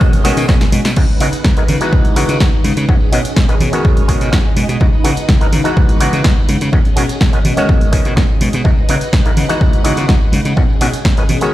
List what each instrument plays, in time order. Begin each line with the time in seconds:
Already playing: clav D#3 G#3 B3 C#4 F#4, string machine C#4 G#4 D#5
0.01 slap bass B1, kick, tambourine
0.13 muted slap bass stroke, closed hi-hat, tambourine, high conga, low conga
0.24 slap bass B2, clav D#3 G#3 B3 C#4 F#4, snare, open hi-hat
0.37 slap bass B2, closed hi-hat, tambourine
0.48 slap bass B1, clav D#3 G#3 B3 C#4 F#4, kick, snare, tambourine
0.61 snare, closed hi-hat, tambourine
0.72 slap bass B2, open hi-hat, high conga
0.85 slap bass B2, snare, closed hi-hat, tambourine
0.96 slap bass C#2, clav E3 G#3 B3 D#4 F#4, string machine D#4 B4 D#5 F#5, kick, crash, tambourine
1.09 tambourine
1.20 slap bass C#3, clav E3 G#3 B3 D#4 F#4, open hi-hat
1.32 muted slap bass stroke, closed hi-hat, tambourine
1.44 slap bass C#2, kick, snare
1.57 clav E3 G#3 B3 D#4 A#4, closed hi-hat, tambourine
1.68 slap bass C#3, open hi-hat, low conga
1.81 clav E3 G#3 B3 D#4 F#4, closed hi-hat, tambourine
1.92 slap bass C#2, kick, tambourine
2.05 muted slap bass stroke, closed hi-hat, tambourine, high conga
2.16 slap bass C#3, clav E3 G#3 B3 D#4 F#4, open hi-hat
2.29 slap bass C#3, closed hi-hat, tambourine
2.40 slap bass C#2, clav G#3 B3 D#4 F#4, kick, snare, tambourine
2.53 tambourine
2.64 slap bass C#3, open hi-hat, high conga
2.77 slap bass C#3, closed hi-hat, tambourine
2.88 slap bass B1, clav D#3 G#3 B3 C#4 F#4, string machine C#4 G#4, kick, tambourine
3.00 muted slap bass stroke, tambourine
3.12 slap bass B2, clav D#3 G#3 B3 C#4 F#4, open hi-hat
3.25 muted slap bass stroke, closed hi-hat, tambourine
3.36 slap bass B1, kick, snare
3.48 clav D#3 G#3 B3 C#4 B4, closed hi-hat, tambourine
3.60 slap bass B2, open hi-hat, low conga
3.73 clav D#3 G#3 B3 C#4 F#4, closed hi-hat, tambourine
3.85 slap bass B1, kick, tambourine
3.97 muted slap bass stroke, closed hi-hat, tambourine, high conga
4.08 slap bass B2, clav D#3 G#3 B3 C#4 F#4, kick, open hi-hat
4.21 slap bass B2, closed hi-hat, tambourine
4.32 slap bass B1, clav D#3 G#3 B3 C#4 F#4, kick, snare
4.45 tambourine
4.56 slap bass B2, open hi-hat, high conga
4.69 slap bass B2, closed hi-hat, tambourine
4.80 slap bass C#2, clav E3 G#3 B3 D#4 F#4, string machine D#4 B4 F#5, kick, tambourine
4.93 tambourine
5.04 slap bass C#3, clav E3 G#3 B3 D#4 F#4, open hi-hat
5.16 muted slap bass stroke, closed hi-hat, tambourine
5.29 slap bass C#2, kick, snare, tambourine
5.41 clav E3 G#3 B3 D#4 A#4, closed hi-hat, tambourine
5.52 slap bass C#3, open hi-hat, low conga
5.64 clav E3 G#3 B3 D#4 F#4, closed hi-hat, tambourine
5.76 slap bass C#2, kick, tambourine
5.89 muted slap bass stroke, closed hi-hat, tambourine, high conga
6.00 slap bass C#3, clav E3 G#3 B3 D#4 F#4, open hi-hat
6.13 slap bass C#3, closed hi-hat, tambourine
6.24 slap bass C#2, clav E3 G#3 B3 D#4 F#4, kick, snare
6.38 tambourine
6.49 slap bass C#3, open hi-hat, high conga
6.61 slap bass C#3, closed hi-hat, tambourine
6.72 slap bass B1, clav D#3 G#3 B3 C#4 F#4, string machine C#4 G#4, kick, tambourine
6.85 muted slap bass stroke, closed hi-hat, tambourine
6.96 slap bass B2, clav D#3 G#3 B3 C#4 F#4, open hi-hat
7.09 muted slap bass stroke, closed hi-hat, tambourine
7.21 slap bass B1, kick, snare
7.33 clav D#3 G#3 B3 C#4 B4, closed hi-hat, tambourine
7.45 slap bass B2, open hi-hat, low conga
7.57 clav D#3 G#3 B3 C#4 F#4, closed hi-hat, tambourine, high conga
7.69 slap bass B1, kick, tambourine
7.81 muted slap bass stroke, closed hi-hat, tambourine, high conga
7.92 slap bass B2, clav D#3 G#3 B3 C#4 F#4, kick, open hi-hat
8.05 slap bass B2, closed hi-hat, tambourine
8.16 slap bass B1, clav D#3 G#3 B3 C#4 F#4, kick, snare, tambourine
8.30 tambourine
8.41 slap bass B2, open hi-hat, high conga
8.53 slap bass B2, closed hi-hat, tambourine
8.64 slap bass C#2, clav E3 G#3 B3 D#4 F#4, string machine D#4 B4 D#5 F#5, kick, tambourine
8.77 tambourine
8.89 slap bass C#3, clav E3 G#3 B3 D#4 F#4, open hi-hat
9.01 muted slap bass stroke, closed hi-hat, tambourine
9.13 slap bass C#2, kick, snare
9.25 clav E3 G#3 B3 D#4 A#4, closed hi-hat, tambourine
9.37 slap bass C#3, open hi-hat, low conga
9.49 clav E3 G#3 B3 D#4 F#4, closed hi-hat, tambourine
9.61 slap bass C#2, kick, tambourine
9.73 muted slap bass stroke, closed hi-hat, tambourine, high conga
9.84 slap bass C#3, clav E3 G#3 B3 D#4 F#4, open hi-hat
9.97 slap bass C#3, closed hi-hat, tambourine
10.08 slap bass C#2, clav E3 G#3 B3 D#4 F#4, kick, snare
10.21 tambourine
10.32 slap bass C#3, open hi-hat, high conga
10.45 slap bass C#3, closed hi-hat, tambourine
10.56 slap bass B1, clav D#3 G#3 B3 C#4 F#4, string machine C#4 G#4 D#5, kick, tambourine
10.70 tambourine
10.81 slap bass B2, clav D#3 G#3 B3 C#4 F#4, open hi-hat
10.93 muted slap bass stroke, closed hi-hat, tambourine
11.05 slap bass B1, kick, snare
11.17 clav D#3 G#3 B3 C#4 B4, closed hi-hat, tambourine
11.29 slap bass B2, open hi-hat, low conga
11.41 clav D#3 G#3 B3 C#4 F#4, closed hi-hat, tambourine